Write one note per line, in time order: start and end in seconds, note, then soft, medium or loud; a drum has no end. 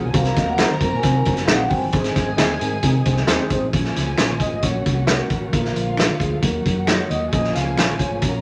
0.00 0.12 B1 loud
0.00 0.13 F3 medium
0.00 0.11 A#3 medium
0.00 0.10 C#4 medium
0.00 0.11 A#4 medium
0.07 0.14 G#4 medium
0.07 0.15 G#5 loud
0.13 0.31 C2 medium
0.13 3.70 D#3 medium
0.13 1.92 F#3 medium
0.13 0.28 C4 medium
0.13 3.70 C4 medium
0.13 0.27 D#4 medium
0.13 1.91 F#4 medium
0.13 0.28 F#4 medium
0.13 1.68 A#4 loud
0.13 0.28 C5 loud
0.13 0.47 F5 medium
0.13 1.68 A#5 loud
0.13 kick loud
0.13 closed hi-hat medium
0.13 muted conga soft
0.13 low conga medium
0.25 snare soft
0.25 closed hi-hat medium
0.25 muted conga soft
0.36 0.62 D#2 medium
0.36 0.50 C4 medium
0.36 0.50 D#4 medium
0.36 0.51 F#4 medium
0.36 0.51 D#5 medium
0.36 kick medium
0.36 snare soft
0.36 closed hi-hat medium
0.48 0.60 F#5 medium
0.48 high conga medium
0.58 0.73 C4 loud
0.58 0.68 D#4 medium
0.58 0.73 D#4 medium
0.58 0.73 F#4 medium
0.58 0.69 F#4 medium
0.58 0.73 C5 loud
0.58 0.69 C5 medium
0.58 0.69 D#5 loud
0.58 finger snap medium
0.58 snare loud
0.58 closed hi-hat loud
0.62 0.92 A#5 loud
0.71 low conga medium
0.81 0.90 F#2 medium
0.81 0.96 C4 medium
0.81 0.96 D#4 medium
0.81 0.96 F#4 medium
0.81 0.96 C5 medium
0.81 kick medium
0.81 closed hi-hat medium
0.81 high conga medium
0.92 1.01 A#2 medium
0.92 high conga medium
0.96 1.42 G#5 loud
1.03 1.20 C3 loud
1.03 1.18 C4 medium
1.03 1.18 D#4 medium
1.03 1.18 F#4 medium
1.03 1.18 C5 medium
1.03 kick medium
1.03 closed hi-hat medium
1.03 high conga medium
1.25 1.43 F#1 loud
1.25 1.40 C4 medium
1.25 1.40 D#4 medium
1.25 1.40 F#4 medium
1.25 1.40 C5 medium
1.25 kick medium
1.25 closed hi-hat medium
1.25 high conga medium
1.36 snare soft
1.36 closed hi-hat medium
1.45 1.65 A#1 loud
1.45 1.63 C4 loud
1.45 1.58 D#4 medium
1.45 1.63 D#4 medium
1.45 1.58 F#4 medium
1.45 1.50 F5 medium
1.45 finger snap loud
1.45 snare loud
1.45 closed hi-hat medium
1.49 1.63 F#4 medium
1.49 1.63 G#4 loud
1.49 1.58 C5 loud
1.49 1.59 D#5 medium
1.49 muted conga soft
1.49 high conga medium
1.53 1.59 F#5 medium
1.67 1.88 G1 medium
1.67 1.84 C4 medium
1.67 1.84 D#4 medium
1.67 1.85 F#4 medium
1.67 1.85 C5 medium
1.67 1.73 G5 medium
1.67 kick medium
1.67 open hi-hat soft
1.72 3.49 G#5 medium
1.72 low conga medium
1.92 2.10 G#1 loud
1.92 3.71 G#3 medium
1.92 2.07 C4 medium
1.92 2.07 D#4 medium
1.92 3.71 G#4 medium
1.92 2.07 G#4 medium
1.92 3.48 G#4 loud
1.92 2.07 C5 loud
1.92 3.48 G#5 loud
1.92 kick loud
1.92 closed hi-hat medium
1.92 muted conga soft
1.92 low conga medium
2.04 snare soft
2.04 closed hi-hat medium
2.15 2.40 G#1 medium
2.15 2.29 C4 medium
2.15 2.29 D#4 medium
2.15 2.30 G#4 medium
2.15 2.30 C5 medium
2.15 kick medium
2.15 snare soft
2.15 closed hi-hat medium
2.28 high conga medium
2.37 2.56 D#2 medium
2.37 2.52 C4 loud
2.37 2.52 D#4 loud
2.37 2.48 D#4 medium
2.37 2.52 G#4 loud
2.37 2.48 G#4 medium
2.37 2.48 C5 medium
2.37 2.52 D#5 loud
2.37 2.49 D#5 medium
2.37 finger snap medium
2.37 snare loud
2.37 closed hi-hat loud
2.50 muted conga soft
2.50 low conga medium
2.61 2.78 G#2 medium
2.61 2.76 C4 medium
2.61 2.76 D#4 medium
2.61 2.76 G#4 medium
2.61 2.76 A#4 loud
2.61 closed hi-hat medium
2.61 high conga medium
2.71 high conga medium
2.83 3.00 C3 medium
2.83 2.97 C4 medium
2.83 2.97 D#4 medium
2.83 2.98 G#4 medium
2.83 2.98 A#4 loud
2.83 kick medium
2.83 closed hi-hat loud
2.83 high conga medium
3.05 3.23 C2 medium
3.05 3.20 C4 medium
3.05 3.20 D#4 medium
3.05 3.20 G#4 medium
3.05 3.20 C5 medium
3.05 kick medium
3.05 closed hi-hat medium
3.05 high conga medium
3.16 snare soft
3.27 3.37 D#2 medium
3.27 3.42 C4 loud
3.27 3.42 D#4 loud
3.27 3.38 D#4 medium
3.27 3.42 G#4 loud
3.27 3.38 G#4 loud
3.27 3.42 C5 loud
3.27 3.38 C5 loud
3.27 3.38 D#5 loud
3.27 finger snap loud
3.27 snare loud
3.27 closed hi-hat medium
3.27 muted conga soft
3.27 high conga medium
3.39 muted conga soft
3.50 3.59 G#1 medium
3.50 3.65 C4 medium
3.50 3.65 D#4 medium
3.50 3.65 G#4 medium
3.50 3.65 C5 loud
3.50 kick medium
3.50 closed hi-hat medium
3.50 low conga medium
3.63 3.71 A1 medium
3.73 3.91 A#1 medium
3.73 4.63 F3 medium
3.73 4.04 F3 medium
3.73 4.62 A#3 medium
3.73 4.04 A#3 soft
3.73 5.52 C#4 medium
3.73 4.04 C#4 medium
3.73 4.63 F4 medium
3.73 4.61 G#4 medium
3.73 4.61 G#5 medium
3.73 kick loud
3.73 closed hi-hat medium
3.73 muted conga soft
3.73 low conga medium
3.84 snare soft
3.84 muted conga soft
3.96 4.13 C#2 medium
3.96 snare soft
3.96 closed hi-hat medium
4.07 high conga medium
4.17 4.44 A#1 medium
4.17 4.27 C#4 medium
4.17 4.28 F4 medium
4.17 4.28 A#4 medium
4.17 4.29 C#5 medium
4.17 finger snap medium
4.17 snare loud
4.17 closed hi-hat loud
4.31 low conga medium
4.40 4.55 D#5 loud
4.40 kick medium
4.40 closed hi-hat medium
4.52 4.61 G#1 medium
4.52 high conga medium
4.56 4.63 D#5 medium
4.62 4.80 A#1 medium
4.62 5.52 F#3 medium
4.62 5.27 F#3 medium
4.62 5.27 A#3 soft
4.62 6.41 A#3 medium
4.62 5.27 C#4 medium
4.62 5.52 F#4 medium
4.62 5.10 C#5 loud
4.62 5.52 F#5 medium
4.62 kick medium
4.62 closed hi-hat medium
4.62 muted conga soft
4.62 high conga medium
4.86 5.20 C2 medium
4.86 kick medium
4.86 closed hi-hat medium
4.86 high conga medium
5.07 5.17 C#4 medium
5.07 5.17 F#4 medium
5.07 5.18 A#4 medium
5.07 5.18 C#5 medium
5.07 finger snap loud
5.07 snare loud
5.07 closed hi-hat medium
5.07 muted conga soft
5.07 high conga medium
5.13 5.54 A#4 medium
5.30 5.47 A1 medium
5.30 kick medium
5.30 closed hi-hat medium
5.30 low conga medium
5.52 5.70 A#1 medium
5.52 6.42 D3 medium
5.52 6.17 F3 medium
5.52 6.42 F3 medium
5.52 6.17 A#3 soft
5.52 6.17 D4 medium
5.52 6.41 F4 medium
5.52 6.42 F4 medium
5.52 5.96 A#4 medium
5.52 6.41 F5 medium
5.52 kick loud
5.52 closed hi-hat medium
5.52 low conga medium
5.65 snare soft
5.65 muted conga soft
5.76 6.10 A#1 medium
5.76 closed hi-hat medium
5.88 high conga medium
5.97 6.07 D4 medium
5.97 6.07 F4 medium
5.97 6.08 A#4 medium
5.97 6.08 D5 medium
5.97 finger snap medium
5.97 snare loud
5.97 closed hi-hat loud
6.09 low conga medium
6.20 6.37 D2 medium
6.20 6.37 G#4 medium
6.20 kick medium
6.20 closed hi-hat medium
6.31 6.42 A4 medium
6.31 high conga medium
6.41 6.60 D#2 loud
6.41 7.31 D#3 medium
6.41 7.06 F#3 medium
6.41 7.32 F#3 medium
6.41 7.06 A#3 medium
6.41 7.32 A#3 medium
6.41 7.07 D#4 medium
6.41 7.31 F#4 medium
6.41 7.32 F#4 medium
6.41 6.85 A#4 medium
6.41 7.31 F#5 medium
6.41 kick medium
6.41 closed hi-hat medium
6.41 muted conga soft
6.41 high conga medium
6.65 7.00 F#2 medium
6.65 kick medium
6.65 closed hi-hat medium
6.65 high conga medium
6.87 6.97 D#4 medium
6.87 6.97 F#4 medium
6.87 6.97 A#4 medium
6.87 7.09 C#5 loud
6.87 6.98 D#5 medium
6.87 finger snap loud
6.87 snare loud
6.87 closed hi-hat medium
6.87 high conga medium
6.98 muted conga soft
7.10 7.27 D#2 medium
7.10 7.33 D#5 loud
7.10 closed hi-hat medium
7.10 low conga medium
7.32 7.50 A#1 medium
7.32 7.97 F3 medium
7.32 8.22 F3 medium
7.32 7.97 A#3 soft
7.32 8.41 A#3 medium
7.32 8.41 C#4 medium
7.32 7.97 C#4 medium
7.32 8.22 F4 medium
7.32 8.21 G#4 medium
7.32 7.56 D#5 loud
7.32 8.20 G#5 medium
7.32 kick loud
7.32 closed hi-hat medium
7.32 muted conga soft
7.32 low conga medium
7.43 snare soft
7.43 muted conga soft
7.55 7.78 C#2 medium
7.55 8.02 F5 loud
7.55 snare soft
7.55 closed hi-hat medium
7.66 high conga medium
7.77 8.03 A#1 loud
7.77 7.87 C#4 medium
7.77 7.87 F4 medium
7.77 7.88 A#4 medium
7.77 7.88 C#5 medium
7.77 finger snap medium
7.77 snare loud
7.77 closed hi-hat loud
7.89 muted conga soft
7.89 low conga medium
7.99 8.41 C#5 loud
7.99 kick medium
7.99 closed hi-hat medium
8.10 8.20 G#1 medium
8.10 high conga medium
8.22 8.40 A#1 loud
8.22 8.41 F#3 medium
8.22 8.41 A#3 medium
8.22 8.41 C#4 medium
8.22 8.41 F#4 medium
8.22 8.41 A#4 medium
8.22 8.41 A#5 medium
8.22 kick medium
8.22 closed hi-hat medium
8.22 high conga medium
8.34 muted conga soft